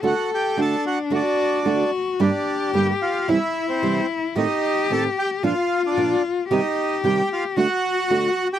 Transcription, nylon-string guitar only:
X:1
M:4/4
L:1/8
Q:1/4=112
K:Dphr
V:1 name="Nylon-string guitar"
[D,A,D^F] z [D,A,DF] z [D,A,DF] z [D,A,DF] z | [G,,D,G,B,DG] z [G,,D,G,B,DG] z [C,=E,G,C=E] z [C,E,G,CE] z | [A,,E,A,C] z [A,,E,A,C] z [B,,F,B,DF] z [B,,F,B,DF] z | [C,E,G,CG] z [C,E,G,CG] z [D,A,D^F] z [D,A,DF] z |]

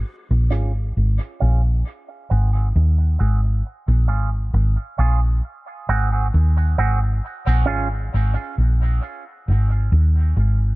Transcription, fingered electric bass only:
X:1
M:4/4
L:1/16
Q:1/4=67
K:Bbm
V:1 name="Fingered electric bass" clef=bass
z B,,, A,,,2 A,,, z B,,,2 z2 A,,,2 E,,2 A,,,2 | z B,,, A,,,2 A,,, z B,,,2 z2 A,,,2 E,,2 A,,,2 | z B,,, A,,,2 A,,, z B,,,2 z2 A,,,2 E,,2 A,,,2 |]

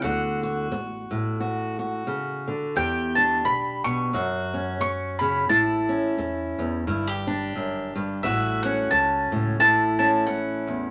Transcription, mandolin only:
X:1
M:4/4
L:1/8
Q:"Swing" 1/4=88
K:Edor
V:1 name="Mandolin"
f4 z4 | g a b c'3 c' b | a4 z4 | e f a2 a a f2 |]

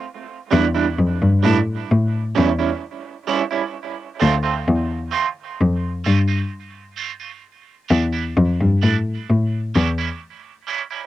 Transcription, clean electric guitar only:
X:1
M:4/4
L:1/16
Q:1/4=65
K:Dm
V:1 name="Clean electric guitar"
z2 [G,DE] [G,DE] z2 [G,DE] z3 [G,^CE] [G,CE] z2 [G,CE] [G,CE] | z2 [A,CF] [A,CF] z2 [A,CF] z3 [A,CF] [A,CF] z2 [A,CF] [A,CF] | z2 [G,DE] [G,DE] z2 [G,DE] z3 [G,^CE] [G,CE] z2 [G,CE] [G,CE] |]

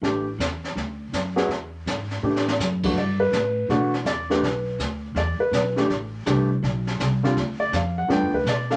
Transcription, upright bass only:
X:1
M:4/4
L:1/8
Q:"Swing" 1/4=164
K:G
V:1 name="Upright bass" clef=bass
A,,,2 E,,2 D,,2 F,,2 | E,,2 ^G,,2 A,,2 F,,2 | G,,2 A,,2 B,,2 E,,2 | B,,,2 D,,2 E,, z B,,,2 |
A,,,2 C,,2 B,,,2 C,,2 | D,,2 =F,,2 (3G,, F,, D,, B,,2 |]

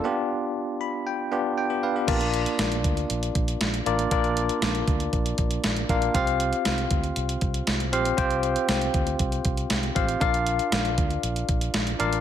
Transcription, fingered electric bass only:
X:1
M:4/4
L:1/8
Q:1/4=118
K:Bblyd
V:1 name="Fingered electric bass" clef=bass
z8 | B,,,2 B,,, D,, B,,, B,,, B,,, A,,, | B,,,2 B,,, D,, B,,, B,,, B,,, B,,, | C,,2 C,, D,, C,, C,, C,, B,,, |
C,,2 C,, D,, C,, C,, C,, A,,, | B,,,2 B,,, D,, B,,, B,,, B,,, A,,, |]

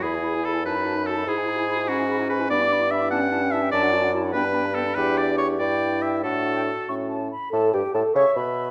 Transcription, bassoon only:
X:1
M:6/8
L:1/8
Q:3/8=97
K:Emix
V:1 name="Bassoon" clef=bass
E,,3 F,,3 | G,,6 | [K:Edor] G,,6 | F,,3 G,,3 |
E,,3 G,,3 | A,,3 A,,2 z | A,, G,, A,, C, B,,2 |]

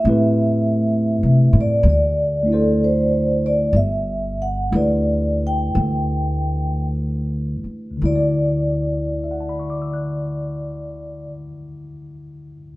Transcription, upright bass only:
X:1
M:4/4
L:1/8
Q:"Swing" 1/4=57
K:D
V:1 name="Upright bass" clef=bass
A,,2- (3A,, =C, A,, D,,4 | G,,,2 D,,2 D,,3 z | D,,8 |]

